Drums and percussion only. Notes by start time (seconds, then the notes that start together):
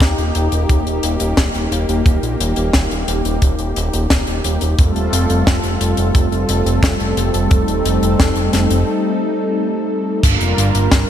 0.00 kick, snare, closed hi-hat
0.18 closed hi-hat
0.35 closed hi-hat
0.52 closed hi-hat
0.69 kick, closed hi-hat
0.87 closed hi-hat
1.03 closed hi-hat
1.20 closed hi-hat
1.37 kick, snare, closed hi-hat
1.54 closed hi-hat
1.72 closed hi-hat
1.89 closed hi-hat
2.06 kick, closed hi-hat
2.23 closed hi-hat
2.41 closed hi-hat
2.56 closed hi-hat
2.73 kick, snare, closed hi-hat
2.91 closed hi-hat
3.08 closed hi-hat
3.25 closed hi-hat
3.42 kick, closed hi-hat
3.59 closed hi-hat
3.76 closed hi-hat
3.94 closed hi-hat
4.10 kick, snare, closed hi-hat
4.27 closed hi-hat
4.44 closed hi-hat
4.61 closed hi-hat
4.79 kick, closed hi-hat
4.96 closed hi-hat
5.13 closed hi-hat
5.30 closed hi-hat
5.47 kick, snare, closed hi-hat
5.64 closed hi-hat
5.81 closed hi-hat
5.97 closed hi-hat
6.15 kick, closed hi-hat
6.32 closed hi-hat
6.49 closed hi-hat
6.66 closed hi-hat
6.83 kick, snare, closed hi-hat
7.00 closed hi-hat
7.17 closed hi-hat
7.34 closed hi-hat
7.51 kick, closed hi-hat
7.68 closed hi-hat
7.85 closed hi-hat
8.03 closed hi-hat
8.20 kick, snare, closed hi-hat
8.36 closed hi-hat
8.53 snare, closed hi-hat
8.70 closed hi-hat
10.23 kick, closed hi-hat, crash
10.41 closed hi-hat
10.58 closed hi-hat
10.75 closed hi-hat
10.91 kick, snare, closed hi-hat